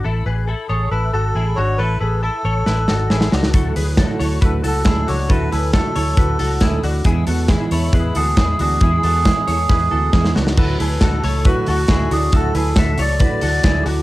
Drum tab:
CC |----------------|----------------|----------------|----------------|
HH |----------------|----------------|x-o-x-o-x-o-x-o-|x-o-x-o-x-o-x-o-|
SD |----------------|--------o-o-oooo|----o-------o---|----o-------o---|
BD |----------------|----------------|o---o---o---o---|o---o---o---o---|

CC |----------------|----------------|x---------------|----------------|
HH |x-o-x-o-x-o-x-o-|x-o-x-o---------|--o-x-o-x-o-x-o-|x-o-x-o-x-o-x-o-|
SD |----o-------o---|----o---o---oooo|----o-------o---|----o-------o---|
BD |o---o---o---o---|o---o---o---o---|o---o---o---o---|o---o---o---o---|